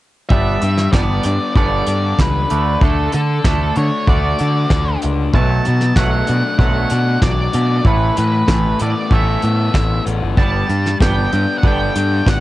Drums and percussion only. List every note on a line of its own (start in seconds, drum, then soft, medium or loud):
0.30 kick loud
0.62 closed hi-hat medium
0.78 snare soft
0.93 kick loud
0.93 snare loud
1.23 closed hi-hat medium
1.56 kick loud
1.86 closed hi-hat medium
2.19 kick loud
2.19 snare loud
2.50 closed hi-hat medium
2.81 kick loud
3.12 closed hi-hat medium
3.44 kick loud
3.44 snare loud
3.75 closed hi-hat medium
4.07 kick loud
4.38 closed hi-hat medium
4.70 kick loud
4.70 snare loud
5.02 closed hi-hat medium
5.34 kick loud
5.65 closed hi-hat medium
5.81 snare soft
5.96 kick loud
5.96 snare loud
6.27 closed hi-hat medium
6.59 kick loud
6.90 closed hi-hat medium
7.22 kick loud
7.22 snare loud
7.53 closed hi-hat medium
7.85 kick loud
8.17 closed hi-hat medium
8.48 kick loud
8.48 snare loud
8.79 closed hi-hat medium
9.11 kick loud
9.42 closed hi-hat medium
9.74 kick loud
9.74 snare loud
10.06 closed hi-hat medium
10.37 kick loud
10.69 closed hi-hat medium
10.86 snare soft
11.01 kick loud
11.01 snare loud
11.32 closed hi-hat medium
11.63 kick loud
11.96 closed hi-hat medium
12.27 kick loud
12.27 snare loud